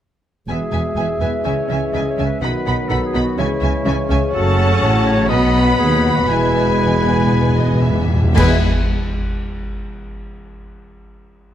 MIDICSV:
0, 0, Header, 1, 12, 480
1, 0, Start_track
1, 0, Key_signature, 4, "major"
1, 0, Tempo, 482703
1, 488, Time_signature, 4, 2, 24, 8
1, 5767, Tempo, 513699
1, 11134, End_track
2, 0, Start_track
2, 0, Title_t, "Violin section"
2, 0, Program_c, 0, 48
2, 477, Note_on_c, 0, 80, 36
2, 556, Note_off_c, 0, 80, 0
2, 708, Note_on_c, 0, 80, 35
2, 787, Note_off_c, 0, 80, 0
2, 960, Note_on_c, 0, 80, 35
2, 1039, Note_off_c, 0, 80, 0
2, 1200, Note_on_c, 0, 80, 32
2, 1279, Note_off_c, 0, 80, 0
2, 1440, Note_on_c, 0, 80, 34
2, 1520, Note_off_c, 0, 80, 0
2, 1714, Note_on_c, 0, 80, 36
2, 1793, Note_off_c, 0, 80, 0
2, 1940, Note_on_c, 0, 80, 37
2, 2020, Note_off_c, 0, 80, 0
2, 2177, Note_on_c, 0, 80, 34
2, 2256, Note_off_c, 0, 80, 0
2, 2414, Note_on_c, 0, 83, 44
2, 2493, Note_off_c, 0, 83, 0
2, 2655, Note_on_c, 0, 83, 40
2, 2735, Note_off_c, 0, 83, 0
2, 2879, Note_on_c, 0, 83, 39
2, 2959, Note_off_c, 0, 83, 0
2, 3133, Note_on_c, 0, 83, 43
2, 3213, Note_off_c, 0, 83, 0
2, 3372, Note_on_c, 0, 80, 47
2, 3451, Note_off_c, 0, 80, 0
2, 3612, Note_on_c, 0, 80, 47
2, 3691, Note_off_c, 0, 80, 0
2, 3851, Note_on_c, 0, 80, 50
2, 3930, Note_off_c, 0, 80, 0
2, 4081, Note_on_c, 0, 80, 51
2, 4160, Note_off_c, 0, 80, 0
2, 4321, Note_on_c, 0, 81, 66
2, 5238, Note_off_c, 0, 81, 0
2, 5275, Note_on_c, 0, 83, 67
2, 6214, Note_off_c, 0, 83, 0
2, 6217, Note_on_c, 0, 80, 61
2, 7953, Note_off_c, 0, 80, 0
2, 8169, Note_on_c, 0, 80, 76
2, 8434, Note_off_c, 0, 80, 0
2, 11134, End_track
3, 0, Start_track
3, 0, Title_t, "Violin section"
3, 0, Program_c, 1, 48
3, 495, Note_on_c, 1, 76, 37
3, 575, Note_off_c, 1, 76, 0
3, 730, Note_on_c, 1, 76, 34
3, 810, Note_off_c, 1, 76, 0
3, 984, Note_on_c, 1, 76, 34
3, 1063, Note_off_c, 1, 76, 0
3, 1206, Note_on_c, 1, 76, 34
3, 1285, Note_off_c, 1, 76, 0
3, 1444, Note_on_c, 1, 76, 37
3, 1524, Note_off_c, 1, 76, 0
3, 1688, Note_on_c, 1, 76, 34
3, 1768, Note_off_c, 1, 76, 0
3, 1921, Note_on_c, 1, 76, 39
3, 2001, Note_off_c, 1, 76, 0
3, 2175, Note_on_c, 1, 76, 35
3, 2255, Note_off_c, 1, 76, 0
3, 2407, Note_on_c, 1, 78, 42
3, 2486, Note_off_c, 1, 78, 0
3, 2644, Note_on_c, 1, 78, 40
3, 2723, Note_off_c, 1, 78, 0
3, 2882, Note_on_c, 1, 78, 38
3, 2961, Note_off_c, 1, 78, 0
3, 3123, Note_on_c, 1, 78, 43
3, 3203, Note_off_c, 1, 78, 0
3, 3358, Note_on_c, 1, 76, 44
3, 3437, Note_off_c, 1, 76, 0
3, 3587, Note_on_c, 1, 76, 46
3, 3666, Note_off_c, 1, 76, 0
3, 3839, Note_on_c, 1, 76, 49
3, 3919, Note_off_c, 1, 76, 0
3, 4080, Note_on_c, 1, 76, 50
3, 4160, Note_off_c, 1, 76, 0
3, 4303, Note_on_c, 1, 78, 64
3, 5229, Note_off_c, 1, 78, 0
3, 5265, Note_on_c, 1, 78, 61
3, 6209, Note_off_c, 1, 78, 0
3, 6226, Note_on_c, 1, 76, 54
3, 6658, Note_off_c, 1, 76, 0
3, 6706, Note_on_c, 1, 71, 59
3, 7389, Note_off_c, 1, 71, 0
3, 7411, Note_on_c, 1, 75, 54
3, 7664, Note_off_c, 1, 75, 0
3, 7665, Note_on_c, 1, 76, 48
3, 8159, Note_off_c, 1, 76, 0
3, 8172, Note_on_c, 1, 76, 73
3, 8435, Note_off_c, 1, 76, 0
3, 11134, End_track
4, 0, Start_track
4, 0, Title_t, "Trumpet"
4, 0, Program_c, 2, 56
4, 493, Note_on_c, 2, 76, 38
4, 2375, Note_off_c, 2, 76, 0
4, 2416, Note_on_c, 2, 71, 40
4, 3373, Note_on_c, 2, 73, 51
4, 3388, Note_off_c, 2, 71, 0
4, 5268, Note_on_c, 2, 71, 71
4, 5283, Note_off_c, 2, 73, 0
4, 7914, Note_off_c, 2, 71, 0
4, 8160, Note_on_c, 2, 71, 74
4, 8362, Note_off_c, 2, 71, 0
4, 11134, End_track
5, 0, Start_track
5, 0, Title_t, "Clarinet"
5, 0, Program_c, 3, 71
5, 472, Note_on_c, 3, 68, 54
5, 1161, Note_off_c, 3, 68, 0
5, 1203, Note_on_c, 3, 71, 53
5, 1442, Note_on_c, 3, 73, 57
5, 1457, Note_off_c, 3, 71, 0
5, 1918, Note_on_c, 3, 75, 60
5, 1933, Note_off_c, 3, 73, 0
5, 2078, Note_off_c, 3, 75, 0
5, 2084, Note_on_c, 3, 73, 54
5, 2232, Note_off_c, 3, 73, 0
5, 2238, Note_on_c, 3, 71, 57
5, 2386, Note_off_c, 3, 71, 0
5, 2392, Note_on_c, 3, 71, 62
5, 2871, Note_on_c, 3, 69, 61
5, 2886, Note_off_c, 3, 71, 0
5, 3031, Note_off_c, 3, 69, 0
5, 3037, Note_on_c, 3, 68, 61
5, 3200, Note_off_c, 3, 68, 0
5, 3212, Note_on_c, 3, 66, 60
5, 3361, Note_on_c, 3, 64, 64
5, 3376, Note_off_c, 3, 66, 0
5, 4078, Note_off_c, 3, 64, 0
5, 4320, Note_on_c, 3, 69, 89
5, 4998, Note_off_c, 3, 69, 0
5, 5035, Note_on_c, 3, 73, 94
5, 5256, Note_off_c, 3, 73, 0
5, 5262, Note_on_c, 3, 75, 102
5, 5626, Note_off_c, 3, 75, 0
5, 5634, Note_on_c, 3, 71, 79
5, 5749, Note_off_c, 3, 71, 0
5, 5755, Note_on_c, 3, 68, 93
5, 6099, Note_on_c, 3, 66, 58
5, 6113, Note_off_c, 3, 68, 0
5, 6210, Note_off_c, 3, 66, 0
5, 6215, Note_on_c, 3, 64, 76
5, 7875, Note_off_c, 3, 64, 0
5, 8163, Note_on_c, 3, 64, 89
5, 8364, Note_off_c, 3, 64, 0
5, 11134, End_track
6, 0, Start_track
6, 0, Title_t, "French horn section"
6, 0, Program_c, 4, 60
6, 489, Note_on_c, 4, 56, 38
6, 494, Note_on_c, 4, 68, 38
6, 2373, Note_off_c, 4, 56, 0
6, 2375, Note_off_c, 4, 68, 0
6, 2411, Note_on_c, 4, 59, 44
6, 2416, Note_on_c, 4, 66, 43
6, 3361, Note_on_c, 4, 68, 49
6, 3367, Note_on_c, 4, 56, 51
6, 3370, Note_off_c, 4, 59, 0
6, 3372, Note_off_c, 4, 66, 0
6, 4317, Note_off_c, 4, 68, 0
6, 4321, Note_off_c, 4, 56, 0
6, 4322, Note_on_c, 4, 66, 61
6, 4331, Note_on_c, 4, 57, 61
6, 5264, Note_off_c, 4, 57, 0
6, 5280, Note_on_c, 4, 59, 66
6, 6198, Note_off_c, 4, 66, 0
6, 6223, Note_on_c, 4, 64, 56
6, 7882, Note_off_c, 4, 59, 0
6, 7913, Note_off_c, 4, 64, 0
6, 8162, Note_on_c, 4, 64, 68
6, 8166, Note_on_c, 4, 59, 70
6, 8363, Note_off_c, 4, 64, 0
6, 8365, Note_off_c, 4, 59, 0
6, 11134, End_track
7, 0, Start_track
7, 0, Title_t, "Viola section"
7, 0, Program_c, 5, 48
7, 489, Note_on_c, 5, 59, 36
7, 568, Note_off_c, 5, 59, 0
7, 728, Note_on_c, 5, 59, 31
7, 808, Note_off_c, 5, 59, 0
7, 964, Note_on_c, 5, 59, 34
7, 1044, Note_off_c, 5, 59, 0
7, 1198, Note_on_c, 5, 59, 33
7, 1277, Note_off_c, 5, 59, 0
7, 1429, Note_on_c, 5, 61, 37
7, 1509, Note_off_c, 5, 61, 0
7, 1673, Note_on_c, 5, 61, 31
7, 1753, Note_off_c, 5, 61, 0
7, 1916, Note_on_c, 5, 61, 34
7, 1996, Note_off_c, 5, 61, 0
7, 2155, Note_on_c, 5, 61, 32
7, 2235, Note_off_c, 5, 61, 0
7, 2406, Note_on_c, 5, 63, 43
7, 2486, Note_off_c, 5, 63, 0
7, 2645, Note_on_c, 5, 63, 39
7, 2725, Note_off_c, 5, 63, 0
7, 2881, Note_on_c, 5, 63, 38
7, 2961, Note_off_c, 5, 63, 0
7, 3123, Note_on_c, 5, 63, 43
7, 3203, Note_off_c, 5, 63, 0
7, 3361, Note_on_c, 5, 61, 44
7, 3441, Note_off_c, 5, 61, 0
7, 3596, Note_on_c, 5, 61, 42
7, 3676, Note_off_c, 5, 61, 0
7, 3838, Note_on_c, 5, 61, 51
7, 3917, Note_off_c, 5, 61, 0
7, 4067, Note_on_c, 5, 61, 46
7, 4146, Note_off_c, 5, 61, 0
7, 4296, Note_on_c, 5, 61, 67
7, 5226, Note_off_c, 5, 61, 0
7, 5254, Note_on_c, 5, 59, 69
7, 6212, Note_off_c, 5, 59, 0
7, 6223, Note_on_c, 5, 59, 59
7, 7921, Note_off_c, 5, 59, 0
7, 8160, Note_on_c, 5, 59, 76
7, 8429, Note_off_c, 5, 59, 0
7, 11134, End_track
8, 0, Start_track
8, 0, Title_t, "Trombone section"
8, 0, Program_c, 6, 61
8, 482, Note_on_c, 6, 52, 42
8, 485, Note_on_c, 6, 47, 38
8, 1407, Note_off_c, 6, 47, 0
8, 1465, Note_on_c, 6, 49, 40
8, 2369, Note_off_c, 6, 52, 0
8, 2421, Note_off_c, 6, 49, 0
8, 2421, Note_on_c, 6, 51, 43
8, 2425, Note_on_c, 6, 54, 44
8, 3375, Note_off_c, 6, 51, 0
8, 3376, Note_off_c, 6, 54, 0
8, 3378, Note_on_c, 6, 49, 55
8, 3378, Note_on_c, 6, 52, 57
8, 4305, Note_on_c, 6, 54, 67
8, 4326, Note_off_c, 6, 52, 0
8, 5244, Note_off_c, 6, 49, 0
8, 5266, Note_on_c, 6, 47, 73
8, 6226, Note_off_c, 6, 54, 0
8, 6233, Note_on_c, 6, 56, 61
8, 7884, Note_off_c, 6, 56, 0
8, 7913, Note_off_c, 6, 47, 0
8, 8158, Note_on_c, 6, 47, 75
8, 8162, Note_on_c, 6, 56, 77
8, 8360, Note_off_c, 6, 47, 0
8, 8363, Note_off_c, 6, 56, 0
8, 11134, End_track
9, 0, Start_track
9, 0, Title_t, "Cello section"
9, 0, Program_c, 7, 48
9, 495, Note_on_c, 7, 40, 39
9, 574, Note_off_c, 7, 40, 0
9, 730, Note_on_c, 7, 40, 36
9, 810, Note_off_c, 7, 40, 0
9, 972, Note_on_c, 7, 40, 41
9, 1051, Note_off_c, 7, 40, 0
9, 1210, Note_on_c, 7, 40, 38
9, 1289, Note_off_c, 7, 40, 0
9, 1447, Note_on_c, 7, 49, 41
9, 1526, Note_off_c, 7, 49, 0
9, 1682, Note_on_c, 7, 49, 37
9, 1761, Note_off_c, 7, 49, 0
9, 1926, Note_on_c, 7, 49, 42
9, 2006, Note_off_c, 7, 49, 0
9, 2158, Note_on_c, 7, 49, 40
9, 2238, Note_off_c, 7, 49, 0
9, 2402, Note_on_c, 7, 47, 44
9, 2482, Note_off_c, 7, 47, 0
9, 2648, Note_on_c, 7, 47, 42
9, 2728, Note_off_c, 7, 47, 0
9, 2882, Note_on_c, 7, 47, 47
9, 2961, Note_off_c, 7, 47, 0
9, 3125, Note_on_c, 7, 47, 47
9, 3204, Note_off_c, 7, 47, 0
9, 3360, Note_on_c, 7, 49, 52
9, 3439, Note_off_c, 7, 49, 0
9, 3600, Note_on_c, 7, 49, 51
9, 3680, Note_off_c, 7, 49, 0
9, 3837, Note_on_c, 7, 49, 62
9, 3917, Note_off_c, 7, 49, 0
9, 4077, Note_on_c, 7, 49, 55
9, 4156, Note_off_c, 7, 49, 0
9, 4316, Note_on_c, 7, 42, 60
9, 4763, Note_off_c, 7, 42, 0
9, 4801, Note_on_c, 7, 45, 63
9, 5268, Note_on_c, 7, 47, 60
9, 5269, Note_off_c, 7, 45, 0
9, 5758, Note_on_c, 7, 39, 66
9, 5759, Note_off_c, 7, 47, 0
9, 6222, Note_off_c, 7, 39, 0
9, 6231, Note_on_c, 7, 40, 55
9, 7925, Note_off_c, 7, 40, 0
9, 8166, Note_on_c, 7, 40, 77
9, 8432, Note_off_c, 7, 40, 0
9, 11134, End_track
10, 0, Start_track
10, 0, Title_t, "Timpani"
10, 0, Program_c, 8, 47
10, 6229, Note_on_c, 8, 40, 30
10, 6291, Note_off_c, 8, 40, 0
10, 6383, Note_on_c, 8, 40, 30
10, 6448, Note_off_c, 8, 40, 0
10, 6460, Note_on_c, 8, 40, 32
10, 6524, Note_off_c, 8, 40, 0
10, 6535, Note_on_c, 8, 40, 36
10, 6591, Note_off_c, 8, 40, 0
10, 6602, Note_on_c, 8, 40, 35
10, 6671, Note_off_c, 8, 40, 0
10, 6684, Note_on_c, 8, 40, 40
10, 6741, Note_off_c, 8, 40, 0
10, 6753, Note_on_c, 8, 40, 41
10, 6820, Note_off_c, 8, 40, 0
10, 6831, Note_on_c, 8, 40, 42
10, 6896, Note_off_c, 8, 40, 0
10, 6908, Note_on_c, 8, 40, 42
10, 6966, Note_off_c, 8, 40, 0
10, 6977, Note_on_c, 8, 40, 44
10, 7043, Note_off_c, 8, 40, 0
10, 7054, Note_on_c, 8, 40, 45
10, 7110, Note_off_c, 8, 40, 0
10, 7121, Note_on_c, 8, 40, 53
10, 7180, Note_off_c, 8, 40, 0
10, 7191, Note_on_c, 8, 40, 48
10, 7262, Note_off_c, 8, 40, 0
10, 7273, Note_on_c, 8, 40, 52
10, 7333, Note_off_c, 8, 40, 0
10, 7344, Note_on_c, 8, 40, 55
10, 7414, Note_off_c, 8, 40, 0
10, 7428, Note_on_c, 8, 40, 58
10, 7494, Note_off_c, 8, 40, 0
10, 7505, Note_on_c, 8, 40, 59
10, 7566, Note_off_c, 8, 40, 0
10, 7578, Note_on_c, 8, 40, 68
10, 7636, Note_off_c, 8, 40, 0
10, 7647, Note_on_c, 8, 40, 73
10, 7715, Note_off_c, 8, 40, 0
10, 7726, Note_on_c, 8, 40, 70
10, 7782, Note_off_c, 8, 40, 0
10, 7793, Note_on_c, 8, 40, 77
10, 7860, Note_off_c, 8, 40, 0
10, 7872, Note_on_c, 8, 40, 76
10, 7939, Note_off_c, 8, 40, 0
10, 7950, Note_on_c, 8, 40, 87
10, 8017, Note_off_c, 8, 40, 0
10, 8029, Note_on_c, 8, 40, 93
10, 8098, Note_off_c, 8, 40, 0
10, 8167, Note_on_c, 8, 40, 94
10, 8388, Note_off_c, 8, 40, 0
10, 11134, End_track
11, 0, Start_track
11, 0, Title_t, "Double bass section"
11, 0, Program_c, 10, 48
11, 477, Note_on_c, 10, 28, 40
11, 557, Note_off_c, 10, 28, 0
11, 718, Note_on_c, 10, 28, 39
11, 797, Note_off_c, 10, 28, 0
11, 955, Note_on_c, 10, 28, 35
11, 1034, Note_off_c, 10, 28, 0
11, 1195, Note_on_c, 10, 28, 39
11, 1275, Note_off_c, 10, 28, 0
11, 1440, Note_on_c, 10, 37, 40
11, 1520, Note_off_c, 10, 37, 0
11, 1687, Note_on_c, 10, 37, 40
11, 1767, Note_off_c, 10, 37, 0
11, 1934, Note_on_c, 10, 37, 44
11, 2014, Note_off_c, 10, 37, 0
11, 2184, Note_on_c, 10, 37, 40
11, 2263, Note_off_c, 10, 37, 0
11, 2408, Note_on_c, 10, 35, 49
11, 2488, Note_off_c, 10, 35, 0
11, 2659, Note_on_c, 10, 35, 43
11, 2738, Note_off_c, 10, 35, 0
11, 2899, Note_on_c, 10, 35, 44
11, 2979, Note_off_c, 10, 35, 0
11, 3139, Note_on_c, 10, 35, 45
11, 3219, Note_off_c, 10, 35, 0
11, 3372, Note_on_c, 10, 37, 49
11, 3451, Note_off_c, 10, 37, 0
11, 3607, Note_on_c, 10, 37, 55
11, 3687, Note_off_c, 10, 37, 0
11, 3843, Note_on_c, 10, 37, 59
11, 3922, Note_off_c, 10, 37, 0
11, 4074, Note_on_c, 10, 37, 59
11, 4154, Note_off_c, 10, 37, 0
11, 4305, Note_on_c, 10, 30, 64
11, 4757, Note_off_c, 10, 30, 0
11, 4787, Note_on_c, 10, 33, 63
11, 5263, Note_off_c, 10, 33, 0
11, 5266, Note_on_c, 10, 35, 72
11, 5754, Note_on_c, 10, 39, 59
11, 5758, Note_off_c, 10, 35, 0
11, 6220, Note_off_c, 10, 39, 0
11, 6226, Note_on_c, 10, 28, 61
11, 7923, Note_off_c, 10, 28, 0
11, 8155, Note_on_c, 10, 28, 82
11, 8427, Note_off_c, 10, 28, 0
11, 11134, End_track
12, 0, Start_track
12, 0, Title_t, "Drums"
12, 8175, Note_on_c, 9, 35, 65
12, 8175, Note_on_c, 9, 49, 61
12, 8268, Note_off_c, 9, 35, 0
12, 8268, Note_off_c, 9, 49, 0
12, 11134, End_track
0, 0, End_of_file